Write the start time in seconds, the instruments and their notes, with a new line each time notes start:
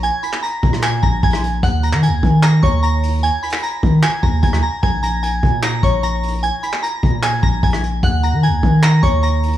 Already playing: 808-style bass A#1
0.03 synth bell G#5 G#6, closed hi-hat
0.23 synth bell B5 B6, closed hi-hat
0.33 clap
0.43 synth bell A#5 A#6, closed hi-hat
0.63 808-style bass A#2, kick
0.73 cross-stick
0.83 synth bell G#5 G#6, clap, closed hi-hat
1.03 808-style bass A#1, synth bell A#5 A#6, kick
1.23 808-style bass A#1, synth bell G#5 G#6, kick, closed hi-hat
1.30 cross-stick, closed hi-hat
1.36 closed hi-hat
1.44 closed hi-hat
1.63 808-style bass D#2, synth bell F#5 F#6, kick, closed hi-hat
1.83 synth bell A#5 A#6, closed hi-hat
1.93 808-style bass D#3, clap
2.03 synth bell G#5 G#6, closed hi-hat
2.08 808-style bass D#2
2.23 808-style bass D#3, kick
2.43 synth bell A#5 A#6, clap, closed hi-hat
2.63 808-style bass D#2, synth bell C#5 C#6, kick, closed hi-hat
2.83 synth bell A#5 A#6, closed hi-hat
3.03 closed hi-hat
3.08 closed hi-hat
3.13 closed hi-hat
3.18 closed hi-hat
3.23 synth bell G#5 G#6, closed hi-hat
3.43 synth bell B5 B6, closed hi-hat
3.50 clap, closed hi-hat
3.57 closed hi-hat
3.63 synth bell A#5 A#6, closed hi-hat
3.83 808-style bass D#3, kick
4.03 synth bell G#5 G#6, clap, closed hi-hat
4.23 808-style bass D#2, synth bell A#5 A#6, kick
4.43 808-style bass D#2, synth bell G#5 G#6, kick, closed hi-hat
4.53 cross-stick
4.63 synth bell A#5 A#6, open hi-hat
4.83 808-style bass A#1, synth bell G#5 G#6, kick, closed hi-hat
5.03 synth bell A#5 A#6, closed hi-hat
5.23 synth bell G#5 G#6, closed hi-hat
5.43 808-style bass A#2, kick
5.63 synth bell A#5 A#6, clap, closed hi-hat
5.83 808-style bass A#1, synth bell C#5 C#6, kick, closed hi-hat
6.03 synth bell A#5 A#6, closed hi-hat
6.23 closed hi-hat
6.28 closed hi-hat
6.33 closed hi-hat
6.38 closed hi-hat
6.43 synth bell G#5 G#6, closed hi-hat
6.63 synth bell B5 B6, closed hi-hat
6.73 clap
6.83 synth bell A#5 A#6, closed hi-hat
7.03 808-style bass A#2, kick
7.23 synth bell G#5 G#6, clap, closed hi-hat
7.43 808-style bass A#1, synth bell A#5 A#6, kick
7.63 808-style bass A#1, synth bell G#5 G#6, kick, closed hi-hat
7.70 cross-stick, closed hi-hat
7.76 closed hi-hat
7.84 closed hi-hat
8.03 808-style bass D#2, synth bell F#5 F#6, kick, closed hi-hat
8.23 synth bell A#5 A#6, closed hi-hat
8.33 808-style bass D#3
8.43 synth bell G#5 G#6, closed hi-hat
8.48 808-style bass D#2
8.63 808-style bass D#3, kick
8.83 synth bell A#5 A#6, clap, closed hi-hat
9.03 808-style bass D#2, synth bell C#5 C#6, kick, closed hi-hat
9.23 synth bell A#5 A#6, closed hi-hat
9.43 closed hi-hat
9.48 closed hi-hat
9.53 closed hi-hat